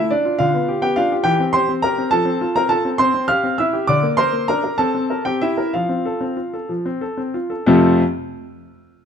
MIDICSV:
0, 0, Header, 1, 2, 480
1, 0, Start_track
1, 0, Key_signature, -1, "major"
1, 0, Tempo, 574163
1, 347, Time_signature, 6, 3, 24, 8
1, 2269, Tempo, 589391
1, 3709, Tempo, 631579
1, 7180, End_track
2, 0, Start_track
2, 0, Title_t, "Grand piano"
2, 0, Program_c, 0, 0
2, 0, Note_on_c, 0, 57, 55
2, 0, Note_on_c, 0, 64, 67
2, 0, Note_on_c, 0, 76, 88
2, 88, Note_on_c, 0, 74, 84
2, 91, Note_off_c, 0, 64, 0
2, 95, Note_off_c, 0, 76, 0
2, 96, Note_on_c, 0, 62, 64
2, 102, Note_off_c, 0, 57, 0
2, 210, Note_on_c, 0, 65, 60
2, 322, Note_off_c, 0, 65, 0
2, 322, Note_on_c, 0, 77, 98
2, 324, Note_off_c, 0, 62, 0
2, 332, Note_on_c, 0, 50, 67
2, 334, Note_on_c, 0, 65, 69
2, 337, Note_off_c, 0, 74, 0
2, 450, Note_on_c, 0, 59, 56
2, 456, Note_off_c, 0, 50, 0
2, 572, Note_on_c, 0, 67, 60
2, 585, Note_off_c, 0, 59, 0
2, 675, Note_off_c, 0, 65, 0
2, 683, Note_off_c, 0, 67, 0
2, 684, Note_on_c, 0, 59, 57
2, 686, Note_on_c, 0, 79, 90
2, 694, Note_off_c, 0, 77, 0
2, 696, Note_on_c, 0, 67, 76
2, 803, Note_on_c, 0, 77, 98
2, 811, Note_on_c, 0, 62, 57
2, 812, Note_off_c, 0, 67, 0
2, 815, Note_on_c, 0, 65, 76
2, 816, Note_off_c, 0, 79, 0
2, 821, Note_off_c, 0, 59, 0
2, 937, Note_on_c, 0, 67, 58
2, 945, Note_off_c, 0, 62, 0
2, 954, Note_off_c, 0, 77, 0
2, 1032, Note_off_c, 0, 67, 0
2, 1033, Note_on_c, 0, 79, 100
2, 1042, Note_on_c, 0, 52, 78
2, 1043, Note_off_c, 0, 65, 0
2, 1044, Note_on_c, 0, 67, 75
2, 1168, Note_on_c, 0, 60, 60
2, 1170, Note_off_c, 0, 52, 0
2, 1187, Note_off_c, 0, 79, 0
2, 1273, Note_off_c, 0, 67, 0
2, 1277, Note_on_c, 0, 84, 110
2, 1285, Note_on_c, 0, 67, 62
2, 1286, Note_on_c, 0, 72, 73
2, 1303, Note_off_c, 0, 60, 0
2, 1411, Note_on_c, 0, 60, 57
2, 1423, Note_off_c, 0, 67, 0
2, 1430, Note_off_c, 0, 84, 0
2, 1520, Note_off_c, 0, 72, 0
2, 1525, Note_on_c, 0, 82, 110
2, 1537, Note_on_c, 0, 70, 72
2, 1538, Note_on_c, 0, 67, 56
2, 1546, Note_off_c, 0, 60, 0
2, 1658, Note_on_c, 0, 60, 60
2, 1669, Note_off_c, 0, 67, 0
2, 1751, Note_off_c, 0, 82, 0
2, 1762, Note_on_c, 0, 81, 109
2, 1765, Note_off_c, 0, 70, 0
2, 1774, Note_on_c, 0, 53, 76
2, 1778, Note_on_c, 0, 69, 84
2, 1783, Note_off_c, 0, 60, 0
2, 1882, Note_on_c, 0, 60, 58
2, 1897, Note_off_c, 0, 53, 0
2, 2016, Note_on_c, 0, 65, 66
2, 2021, Note_off_c, 0, 60, 0
2, 2117, Note_off_c, 0, 69, 0
2, 2135, Note_off_c, 0, 81, 0
2, 2137, Note_on_c, 0, 60, 60
2, 2137, Note_on_c, 0, 82, 103
2, 2148, Note_off_c, 0, 65, 0
2, 2148, Note_on_c, 0, 70, 72
2, 2250, Note_on_c, 0, 81, 100
2, 2255, Note_on_c, 0, 65, 62
2, 2260, Note_off_c, 0, 70, 0
2, 2263, Note_off_c, 0, 82, 0
2, 2263, Note_on_c, 0, 69, 73
2, 2269, Note_off_c, 0, 60, 0
2, 2379, Note_on_c, 0, 60, 53
2, 2386, Note_off_c, 0, 65, 0
2, 2397, Note_off_c, 0, 81, 0
2, 2483, Note_off_c, 0, 60, 0
2, 2485, Note_off_c, 0, 69, 0
2, 2488, Note_on_c, 0, 84, 112
2, 2495, Note_on_c, 0, 60, 71
2, 2496, Note_on_c, 0, 72, 80
2, 2606, Note_off_c, 0, 60, 0
2, 2618, Note_on_c, 0, 60, 59
2, 2721, Note_off_c, 0, 72, 0
2, 2729, Note_on_c, 0, 89, 115
2, 2734, Note_off_c, 0, 84, 0
2, 2734, Note_on_c, 0, 67, 64
2, 2735, Note_on_c, 0, 77, 85
2, 2746, Note_off_c, 0, 60, 0
2, 2857, Note_on_c, 0, 60, 59
2, 2863, Note_off_c, 0, 67, 0
2, 2876, Note_off_c, 0, 89, 0
2, 2960, Note_off_c, 0, 77, 0
2, 2976, Note_on_c, 0, 88, 90
2, 2985, Note_off_c, 0, 60, 0
2, 2987, Note_on_c, 0, 64, 61
2, 2990, Note_on_c, 0, 76, 69
2, 3097, Note_on_c, 0, 67, 63
2, 3110, Note_off_c, 0, 64, 0
2, 3209, Note_off_c, 0, 76, 0
2, 3214, Note_on_c, 0, 86, 105
2, 3218, Note_off_c, 0, 88, 0
2, 3219, Note_off_c, 0, 67, 0
2, 3224, Note_on_c, 0, 50, 77
2, 3227, Note_on_c, 0, 74, 81
2, 3339, Note_off_c, 0, 50, 0
2, 3340, Note_on_c, 0, 58, 64
2, 3361, Note_off_c, 0, 86, 0
2, 3449, Note_off_c, 0, 74, 0
2, 3455, Note_on_c, 0, 84, 116
2, 3463, Note_on_c, 0, 70, 66
2, 3467, Note_on_c, 0, 72, 86
2, 3468, Note_off_c, 0, 58, 0
2, 3582, Note_on_c, 0, 58, 53
2, 3591, Note_off_c, 0, 70, 0
2, 3693, Note_off_c, 0, 72, 0
2, 3704, Note_off_c, 0, 84, 0
2, 3709, Note_on_c, 0, 82, 99
2, 3713, Note_off_c, 0, 58, 0
2, 3716, Note_on_c, 0, 62, 55
2, 3717, Note_on_c, 0, 70, 78
2, 3815, Note_off_c, 0, 70, 0
2, 3827, Note_on_c, 0, 70, 60
2, 3834, Note_off_c, 0, 62, 0
2, 3934, Note_on_c, 0, 81, 104
2, 3942, Note_off_c, 0, 82, 0
2, 3943, Note_off_c, 0, 70, 0
2, 3943, Note_on_c, 0, 60, 70
2, 3943, Note_on_c, 0, 69, 79
2, 4050, Note_off_c, 0, 60, 0
2, 4062, Note_on_c, 0, 60, 57
2, 4179, Note_on_c, 0, 70, 57
2, 4185, Note_off_c, 0, 60, 0
2, 4263, Note_off_c, 0, 81, 0
2, 4273, Note_off_c, 0, 69, 0
2, 4293, Note_on_c, 0, 79, 86
2, 4297, Note_on_c, 0, 60, 54
2, 4304, Note_off_c, 0, 70, 0
2, 4305, Note_on_c, 0, 67, 68
2, 4412, Note_off_c, 0, 67, 0
2, 4414, Note_off_c, 0, 79, 0
2, 4418, Note_on_c, 0, 76, 92
2, 4422, Note_off_c, 0, 60, 0
2, 4424, Note_on_c, 0, 64, 70
2, 4424, Note_on_c, 0, 67, 53
2, 4539, Note_on_c, 0, 70, 57
2, 4545, Note_off_c, 0, 67, 0
2, 4643, Note_off_c, 0, 64, 0
2, 4656, Note_off_c, 0, 76, 0
2, 4657, Note_off_c, 0, 70, 0
2, 4661, Note_on_c, 0, 77, 81
2, 4669, Note_on_c, 0, 53, 69
2, 4669, Note_on_c, 0, 65, 60
2, 4779, Note_on_c, 0, 60, 51
2, 4780, Note_off_c, 0, 53, 0
2, 4905, Note_off_c, 0, 60, 0
2, 4905, Note_on_c, 0, 69, 62
2, 5019, Note_on_c, 0, 60, 54
2, 5030, Note_off_c, 0, 69, 0
2, 5130, Note_off_c, 0, 65, 0
2, 5141, Note_on_c, 0, 65, 49
2, 5149, Note_off_c, 0, 60, 0
2, 5269, Note_on_c, 0, 69, 51
2, 5271, Note_off_c, 0, 65, 0
2, 5388, Note_on_c, 0, 53, 59
2, 5391, Note_off_c, 0, 77, 0
2, 5396, Note_off_c, 0, 69, 0
2, 5507, Note_off_c, 0, 53, 0
2, 5512, Note_on_c, 0, 60, 55
2, 5632, Note_on_c, 0, 69, 55
2, 5641, Note_off_c, 0, 60, 0
2, 5755, Note_on_c, 0, 60, 54
2, 5763, Note_off_c, 0, 69, 0
2, 5882, Note_on_c, 0, 65, 54
2, 5886, Note_off_c, 0, 60, 0
2, 6001, Note_on_c, 0, 69, 57
2, 6011, Note_off_c, 0, 65, 0
2, 6123, Note_off_c, 0, 69, 0
2, 6128, Note_on_c, 0, 41, 97
2, 6129, Note_on_c, 0, 48, 81
2, 6129, Note_on_c, 0, 57, 88
2, 6131, Note_on_c, 0, 60, 85
2, 6136, Note_on_c, 0, 65, 81
2, 6136, Note_on_c, 0, 69, 83
2, 6391, Note_off_c, 0, 41, 0
2, 6391, Note_off_c, 0, 48, 0
2, 6391, Note_off_c, 0, 57, 0
2, 6392, Note_off_c, 0, 60, 0
2, 6395, Note_off_c, 0, 65, 0
2, 6395, Note_off_c, 0, 69, 0
2, 7180, End_track
0, 0, End_of_file